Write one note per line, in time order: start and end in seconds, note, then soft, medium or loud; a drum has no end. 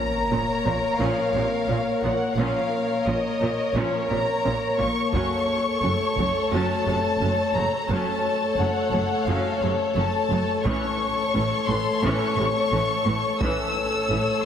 0.00 2.33 A#3 soft
0.00 2.33 A#4 soft
0.00 2.33 C#5 soft
0.00 0.96 A#5 medium
0.00 sub drop soft
0.31 0.39 A#1 soft
0.31 0.39 A#2 soft
0.31 0.39 F3 soft
0.31 0.39 C#4 soft
0.65 0.73 A#1 soft
0.65 0.74 A#2 soft
0.65 0.74 F3 soft
0.65 0.74 A#3 soft
0.65 taiko soft
0.99 1.07 A#1 soft
0.99 1.08 A#2 soft
0.99 1.31 F3 soft
0.99 1.31 C#4 soft
0.99 2.03 F5 medium
1.34 1.42 A#1 soft
1.34 1.42 A#2 soft
1.34 1.42 C3 soft
1.34 1.43 F3 soft
1.68 1.76 A#1 soft
1.68 1.77 A#2 soft
1.68 1.76 F3 soft
1.68 1.76 C#4 soft
2.02 2.10 A#1 soft
2.02 2.12 A#2 soft
2.02 2.11 F3 soft
2.02 2.10 A#3 soft
2.02 2.37 F#5 soft
2.36 2.45 A#1 soft
2.36 2.46 A#2 soft
2.36 2.70 F3 soft
2.36 5.78 A#3 soft
2.36 2.69 C#4 soft
2.36 5.09 A#4 soft
2.36 5.09 C#5 soft
2.36 3.06 F5 medium
3.06 3.14 A#1 soft
3.06 3.14 A#2 soft
3.06 3.15 F3 soft
3.06 3.15 C#4 soft
3.06 3.75 D#5 soft
3.40 3.48 A#1 soft
3.40 3.50 A#2 soft
3.40 3.49 F3 soft
3.40 3.49 A#3 soft
3.75 3.83 A#1 soft
3.75 3.84 A#2 soft
3.75 4.07 F3 soft
3.75 4.08 C#4 soft
3.75 4.10 C#5 soft
4.09 4.17 A#1 soft
4.09 4.18 A#2 soft
4.09 4.19 C3 soft
4.09 4.19 F3 soft
4.09 4.78 A#5 medium
4.44 4.52 A#1 soft
4.44 4.53 A#2 soft
4.44 4.52 F3 soft
4.44 4.52 C#4 soft
4.78 4.87 A#1 soft
4.78 4.87 A#2 soft
4.78 4.86 F3 soft
4.78 4.86 A#3 soft
4.78 5.13 C#6 medium
5.13 5.21 F#1 soft
5.13 5.22 F#2 soft
5.13 5.45 F#3 soft
5.13 5.45 C#4 soft
5.13 7.85 A4 soft
5.13 7.72 C#5 soft
5.13 7.85 C#5 soft
5.13 6.49 C#6 medium
5.13 taiko soft
5.82 5.90 F#1 soft
5.82 5.91 F#2 soft
5.82 5.91 F#3 soft
5.82 7.72 A3 soft
5.82 5.90 C#4 soft
6.17 6.25 F#1 soft
6.17 6.26 F#2 soft
6.17 6.26 F#3 soft
6.17 6.26 A3 soft
6.17 taiko soft
6.51 6.60 F#1 soft
6.51 6.61 F#2 soft
6.51 6.83 F#3 soft
6.51 6.83 C#4 soft
6.51 7.53 A5 medium
6.86 6.94 F#1 soft
6.86 6.95 F#2 soft
6.86 6.94 C3 soft
6.86 6.94 F#3 soft
7.20 7.28 F#1 soft
7.20 7.29 F#2 soft
7.20 7.29 F#3 soft
7.20 7.28 C#4 soft
7.54 7.62 F#1 soft
7.54 7.63 F#2 soft
7.54 7.64 F#3 soft
7.54 7.64 A3 soft
7.54 7.89 A#5 medium
7.89 7.97 F#1 medium
7.89 7.99 F#2 soft
7.89 8.22 F#3 soft
7.89 10.61 A3 soft
7.89 8.22 C#4 soft
7.89 10.61 A4 soft
7.89 10.61 C#5 soft
7.89 8.57 A5 medium
8.58 8.66 F#1 soft
8.58 8.67 F#2 soft
8.58 8.67 F#3 soft
8.58 8.67 C#4 soft
8.58 9.28 F#5 medium
8.93 9.01 F#1 soft
8.93 9.01 F#2 soft
8.93 9.01 F#3 soft
8.93 9.01 A3 soft
9.26 9.35 F#1 medium
9.26 9.36 F#2 medium
9.26 9.59 F#3 soft
9.26 9.59 C#4 soft
9.26 9.61 F5 medium
9.62 9.70 F#1 soft
9.62 9.71 F#2 soft
9.62 9.71 C3 soft
9.62 9.71 F#3 soft
9.96 10.04 F#1 soft
9.96 10.05 F#2 soft
9.96 10.05 F#3 soft
9.96 10.05 C#4 soft
9.96 10.61 A5 medium
10.30 10.39 F#1 soft
10.30 10.40 F#2 soft
10.30 10.38 F#3 soft
10.30 10.38 A3 soft
10.64 10.73 A1 medium
10.64 10.74 A2 medium
10.64 10.97 E3 medium
10.64 13.37 A3 medium
10.64 10.97 C#4 medium
10.64 13.36 A4 soft
10.64 13.37 C#5 soft
10.64 13.37 C#5 medium
10.64 11.66 C#6 medium
10.64 taiko medium
11.34 11.43 A1 soft
11.34 11.43 A2 soft
11.34 11.42 E3 soft
11.34 11.42 C#4 soft
11.68 11.77 A1 soft
11.68 11.76 A2 soft
11.68 11.77 E3 soft
11.68 11.77 A3 soft
11.68 12.03 C6 medium
12.02 12.12 A1 medium
12.02 12.11 A2 medium
12.02 12.36 E3 medium
12.02 12.36 C#4 medium
12.02 13.41 C#6 medium
12.37 12.46 A1 soft
12.37 12.45 A2 soft
12.37 12.47 C3 soft
12.37 12.46 E3 soft
12.72 12.81 A1 soft
12.72 12.80 A2 soft
12.72 12.82 E3 soft
12.72 12.82 C#4 soft
13.06 13.15 A1 soft
13.06 13.14 A2 soft
13.06 13.15 E3 medium
13.06 13.15 A3 soft
13.40 13.49 A1 medium
13.40 13.49 A2 medium
13.40 13.74 E3 medium
13.40 14.45 A3 medium
13.40 13.74 C#4 medium
13.40 14.45 A4 medium
13.40 14.45 C#5 medium
13.40 14.42 E6 medium
13.40 taiko medium
14.10 14.18 A1 soft
14.10 14.18 A2 soft
14.10 14.19 E3 soft
14.10 14.19 C#4 soft